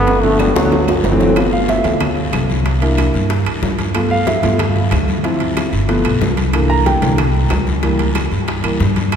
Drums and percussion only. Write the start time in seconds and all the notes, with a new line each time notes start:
0.07 high bongo, high conga, high timbale, long guiro
0.23 high bongo, high conga, high timbale
0.39 high bongo, high conga, low timbale, short guiro, claves
0.56 high bongo, high timbale, short guiro
0.72 low bongo, high conga, low timbale, long guiro
0.88 low bongo, high conga, low timbale, claves
1.04 low bongo, high conga, low timbale, short guiro
1.20 low bongo, high conga, low timbale, short guiro
1.36 high bongo, high conga, high timbale, long guiro, claves
1.52 high bongo, high conga
1.69 high bongo, high conga, high timbale, short guiro
1.84 high conga, high timbale, short guiro
2.00 high bongo, high conga, low conga, high timbale, long guiro, claves
2.17 high bongo, high conga
2.33 high bongo, low bongo, high conga, high timbale, short guiro, claves
2.49 high bongo, high conga, short guiro
2.66 high bongo, high conga, high timbale, long guiro
2.82 high bongo, high conga, high timbale
2.98 high bongo, high conga, high timbale, short guiro, claves
3.14 high bongo, short guiro
3.30 high bongo, high conga, high timbale, long guiro
3.46 high conga, high timbale, claves
3.63 high bongo, low bongo, high conga, low timbale, short guiro
3.79 high bongo, high conga, high timbale, short guiro
3.95 high bongo, high conga, high timbale, long guiro, claves
4.11 high bongo, high conga
4.27 high bongo, high conga, high timbale, short guiro
4.43 high conga, high timbale, short guiro
4.59 high bongo, high conga, low conga, high timbale, long guiro, claves
4.76 high bongo, high conga, low conga
4.91 high bongo, low bongo, high conga, high timbale, short guiro, claves
5.08 high bongo, high conga, short guiro
5.24 high bongo, high conga, high timbale, long guiro
5.40 high bongo, high conga, high timbale
5.57 high bongo, high conga, high timbale, short guiro, claves
5.73 high bongo, short guiro
5.89 high bongo, high conga, high timbale, long guiro
6.05 high conga, high timbale, claves
6.21 high bongo, low bongo, high conga, low timbale, short guiro
6.37 high bongo, high conga, high timbale, short guiro
6.53 high bongo, high timbale, long guiro, claves
6.70 high bongo, high conga
6.86 high bongo, high conga, high timbale, short guiro
7.02 high conga, high timbale, short guiro
7.18 high bongo, high conga, low conga, high timbale, long guiro, claves
7.34 high bongo, high conga
7.50 high bongo, low bongo, high conga, high timbale, low timbale, short guiro, claves
7.67 high bongo, high conga, short guiro
7.83 high bongo, high conga, high timbale, long guiro
7.99 high bongo, high conga, high timbale
8.15 high bongo, high conga, high timbale, short guiro, claves
8.32 high bongo, short guiro
8.48 high bongo, high conga, high timbale, long guiro
8.64 high conga, high timbale, claves
8.80 high bongo, low bongo, high conga, short guiro
8.96 high bongo, high conga, high timbale, short guiro
9.12 high bongo, high conga, high timbale, long guiro, claves